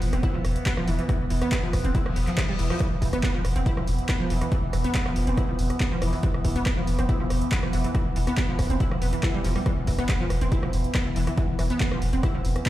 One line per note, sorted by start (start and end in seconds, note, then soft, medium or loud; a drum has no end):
0.00 0.12 E1 loud
0.00 2.79 E3 medium
0.00 2.79 B3 medium
0.00 open hi-hat loud
0.13 0.23 E1 medium
0.13 0.17 C4 medium
0.13 cross-stick medium
0.13 closed hi-hat medium
0.23 0.26 E4 loud
0.23 kick loud
0.23 closed hi-hat medium
0.34 0.44 E1 medium
0.34 0.37 F3 medium
0.45 0.56 E1 loud
0.45 cross-stick medium
0.45 open hi-hat loud
0.56 closed hi-hat medium
0.66 0.73 B3 loud
0.66 kick loud
0.66 clap loud
0.66 closed hi-hat medium
0.77 0.87 E1 medium
0.77 0.83 F3 loud
0.77 cross-stick medium
0.87 0.98 E1 loud
0.87 0.94 E3 loud
0.87 open hi-hat loud
0.99 1.03 E3 medium
0.99 closed hi-hat medium
1.09 1.12 E3 loud
1.09 kick loud
1.09 cross-stick medium
1.09 closed hi-hat medium
1.20 1.30 E1 medium
1.30 1.41 E1 loud
1.30 1.35 E3 medium
1.30 open hi-hat loud
1.42 1.46 B3 loud
1.42 cross-stick medium
1.42 closed hi-hat medium
1.52 1.58 B3 loud
1.52 kick loud
1.52 clap loud
1.52 closed hi-hat medium
1.63 1.73 E1 medium
1.63 1.69 F3 loud
1.73 1.84 E1 loud
1.73 kick medium
1.73 cross-stick medium
1.73 open hi-hat loud
1.84 1.94 E1 medium
1.84 1.89 C4 medium
1.84 closed hi-hat medium
1.95 1.97 E4 loud
1.95 kick loud
1.95 closed hi-hat medium
1.95 reverse cymbal medium
2.06 2.16 E1 medium
2.06 2.08 F3 medium
2.06 cross-stick medium
2.16 2.27 E1 loud
2.16 2.19 B3 medium
2.16 open hi-hat loud
2.27 2.31 F3 medium
2.27 clap soft
2.27 closed hi-hat medium
2.37 2.44 E3 loud
2.37 kick loud
2.37 cross-stick medium
2.37 clap loud
2.37 closed hi-hat medium
2.49 2.58 E1 medium
2.49 2.53 G3 loud
2.59 2.70 E1 loud
2.59 2.66 E3 medium
2.59 open hi-hat loud
2.70 2.76 F3 loud
2.70 cross-stick medium
2.70 open hi-hat medium
2.80 12.69 E3 medium
2.80 2.83 E3 loud
2.80 12.69 B3 medium
2.80 kick loud
2.80 cross-stick medium
2.80 closed hi-hat medium
2.92 3.01 E1 medium
3.02 3.13 E1 loud
3.02 3.06 E3 medium
3.02 kick medium
3.02 open hi-hat loud
3.13 3.17 B3 loud
3.13 cross-stick medium
3.13 closed hi-hat medium
3.23 3.30 B3 loud
3.23 kick loud
3.23 clap loud
3.23 closed hi-hat medium
3.34 3.44 E1 medium
3.34 3.40 F3 loud
3.45 3.55 E1 loud
3.45 cross-stick medium
3.45 open hi-hat loud
3.56 3.66 E1 medium
3.56 3.60 C4 medium
3.56 closed hi-hat medium
3.66 3.69 E4 loud
3.66 kick loud
3.66 closed hi-hat medium
3.77 3.87 E1 medium
3.77 3.80 F3 medium
3.77 cross-stick medium
3.87 3.98 E1 loud
3.87 open hi-hat loud
3.99 closed hi-hat medium
4.09 4.16 B3 loud
4.09 kick loud
4.09 cross-stick medium
4.09 clap loud
4.09 closed hi-hat medium
4.20 4.30 E1 medium
4.20 4.26 F3 loud
4.30 4.41 E1 loud
4.30 4.37 E3 loud
4.30 open hi-hat loud
4.41 4.46 E3 medium
4.41 cross-stick medium
4.41 closed hi-hat medium
4.52 4.54 E3 loud
4.52 kick loud
4.52 closed hi-hat medium
4.63 4.73 E1 medium
4.73 4.84 E1 loud
4.73 4.78 E3 medium
4.73 cross-stick medium
4.73 open hi-hat loud
4.84 4.88 B3 loud
4.84 closed hi-hat medium
4.95 5.01 B3 loud
4.95 kick loud
4.95 clap loud
4.95 closed hi-hat medium
5.06 5.16 E1 medium
5.06 5.12 F3 loud
5.06 cross-stick medium
5.16 5.27 E1 loud
5.16 open hi-hat loud
5.27 5.37 E1 medium
5.27 5.31 C4 medium
5.27 closed hi-hat medium
5.37 5.40 E4 loud
5.37 kick loud
5.37 cross-stick medium
5.37 closed hi-hat medium
5.49 5.58 E1 medium
5.49 5.51 F3 medium
5.59 5.70 E1 loud
5.59 open hi-hat loud
5.70 cross-stick medium
5.70 closed hi-hat medium
5.80 5.87 B3 loud
5.80 kick loud
5.80 clap loud
5.80 closed hi-hat medium
5.92 6.01 E1 medium
5.92 5.98 F3 loud
6.02 6.13 E1 loud
6.02 6.08 E3 loud
6.02 cross-stick medium
6.02 open hi-hat loud
6.13 6.17 E3 medium
6.13 open hi-hat medium
6.23 6.26 E3 loud
6.23 kick loud
6.23 closed hi-hat medium
6.34 6.44 E1 medium
6.34 cross-stick medium
6.45 6.56 E1 loud
6.45 6.49 E3 medium
6.45 kick medium
6.45 open hi-hat loud
6.56 6.60 B3 loud
6.56 closed hi-hat medium
6.66 6.73 B3 loud
6.66 kick loud
6.66 cross-stick medium
6.66 clap loud
6.66 closed hi-hat medium
6.77 6.87 E1 medium
6.77 6.83 F3 loud
6.87 6.98 E1 loud
6.87 open hi-hat loud
6.99 7.09 E1 medium
6.99 7.03 C4 medium
6.99 cross-stick medium
6.99 closed hi-hat medium
7.09 7.12 E4 loud
7.09 kick loud
7.09 closed hi-hat medium
7.20 7.30 E1 medium
7.20 7.23 F3 medium
7.30 7.41 E1 loud
7.30 cross-stick medium
7.30 open hi-hat loud
7.42 closed hi-hat medium
7.52 7.58 B3 loud
7.52 kick loud
7.52 clap loud
7.52 closed hi-hat medium
7.63 7.73 E1 medium
7.63 7.69 F3 loud
7.63 cross-stick medium
7.73 7.84 E1 loud
7.73 7.80 E3 loud
7.73 open hi-hat loud
7.84 7.88 E3 medium
7.84 closed hi-hat medium
7.95 7.97 E3 loud
7.95 kick loud
7.95 cross-stick medium
7.95 closed hi-hat medium
8.06 8.15 E1 medium
8.16 8.27 E1 loud
8.16 8.20 E3 medium
8.16 open hi-hat loud
8.27 8.31 B3 loud
8.27 cross-stick medium
8.27 closed hi-hat medium
8.37 8.44 B3 loud
8.37 kick loud
8.37 clap loud
8.37 closed hi-hat medium
8.49 8.58 E1 medium
8.49 8.55 F3 loud
8.59 8.70 E1 loud
8.59 kick medium
8.59 cross-stick medium
8.59 open hi-hat loud
8.70 8.80 E1 medium
8.70 8.74 C4 medium
8.70 closed hi-hat medium
8.80 8.83 E4 loud
8.80 kick loud
8.80 closed hi-hat medium
8.91 9.01 E1 medium
8.91 8.94 F3 medium
8.91 cross-stick medium
9.02 9.13 E1 loud
9.02 9.06 B3 medium
9.02 open hi-hat loud
9.13 9.17 E3 medium
9.13 closed hi-hat medium
9.23 9.26 E4 loud
9.23 kick loud
9.23 cross-stick medium
9.23 clap loud
9.23 closed hi-hat medium
9.34 9.44 E1 medium
9.34 9.37 G3 loud
9.44 9.56 E1 loud
9.44 9.49 F3 loud
9.44 open hi-hat loud
9.56 9.58 G3 medium
9.56 cross-stick medium
9.56 open hi-hat medium
9.66 9.69 E3 loud
9.66 kick loud
9.66 cross-stick medium
9.66 closed hi-hat medium
9.77 9.87 E1 medium
9.87 9.98 E1 loud
9.87 9.92 E3 medium
9.87 kick medium
9.87 open hi-hat loud
9.98 10.03 B3 loud
9.98 cross-stick medium
9.98 closed hi-hat medium
10.09 10.16 B3 loud
10.09 kick loud
10.09 clap loud
10.09 closed hi-hat medium
10.20 10.30 E1 medium
10.20 10.26 F3 loud
10.30 10.41 E1 loud
10.30 cross-stick medium
10.30 open hi-hat loud
10.41 10.52 E1 medium
10.41 10.46 C4 medium
10.41 closed hi-hat medium
10.52 10.54 E4 loud
10.52 kick loud
10.52 closed hi-hat medium
10.63 10.73 E1 medium
10.63 10.65 F3 medium
10.63 cross-stick medium
10.73 10.84 E1 loud
10.73 open hi-hat loud
10.84 closed hi-hat medium
10.95 11.01 B3 loud
10.95 kick loud
10.95 cross-stick medium
10.95 clap loud
10.95 closed hi-hat medium
11.06 11.15 E1 medium
11.06 11.12 E3 medium
11.16 11.27 E1 loud
11.16 11.23 E3 loud
11.16 open hi-hat loud
11.27 11.31 E3 medium
11.27 cross-stick medium
11.27 closed hi-hat medium
11.37 11.40 E3 loud
11.37 kick loud
11.37 closed hi-hat medium
11.49 11.58 E1 medium
11.59 11.70 E1 loud
11.59 11.63 E3 medium
11.59 cross-stick medium
11.59 open hi-hat loud
11.70 11.74 B3 loud
11.70 closed hi-hat medium
11.80 11.87 B3 loud
11.80 kick loud
11.80 clap loud
11.80 closed hi-hat medium
11.92 12.01 E1 medium
11.92 11.98 F3 loud
11.92 cross-stick medium
12.02 12.12 E1 loud
12.02 open hi-hat loud
12.13 12.23 E1 medium
12.13 12.17 C4 medium
12.13 closed hi-hat medium
12.23 12.26 E4 loud
12.23 kick loud
12.23 cross-stick medium
12.23 closed hi-hat medium
12.34 12.44 E1 medium
12.34 12.37 F3 medium
12.45 12.56 E1 loud
12.45 open hi-hat loud
12.56 cross-stick medium
12.56 closed hi-hat medium
12.66 12.69 B3 loud
12.66 kick loud
12.66 clap loud
12.66 closed hi-hat medium